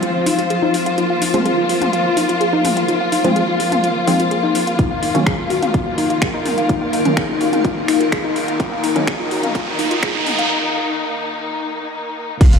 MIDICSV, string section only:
0, 0, Header, 1, 2, 480
1, 0, Start_track
1, 0, Tempo, 476190
1, 987, Time_signature, 4, 2, 24, 8
1, 12692, End_track
2, 0, Start_track
2, 0, Title_t, "String section"
2, 0, Program_c, 0, 48
2, 0, Note_on_c, 0, 53, 75
2, 0, Note_on_c, 0, 60, 70
2, 0, Note_on_c, 0, 65, 83
2, 949, Note_off_c, 0, 60, 0
2, 986, Note_on_c, 0, 58, 70
2, 4787, Note_off_c, 0, 53, 0
2, 4827, Note_on_c, 0, 51, 77
2, 8627, Note_off_c, 0, 65, 0
2, 8667, Note_on_c, 0, 63, 91
2, 12466, Note_off_c, 0, 51, 0
2, 12466, Note_off_c, 0, 58, 0
2, 12469, Note_off_c, 0, 63, 0
2, 12508, Note_on_c, 0, 53, 77
2, 12508, Note_on_c, 0, 60, 77
2, 12508, Note_on_c, 0, 65, 92
2, 12692, Note_off_c, 0, 53, 0
2, 12692, Note_off_c, 0, 60, 0
2, 12692, Note_off_c, 0, 65, 0
2, 12692, End_track
0, 0, End_of_file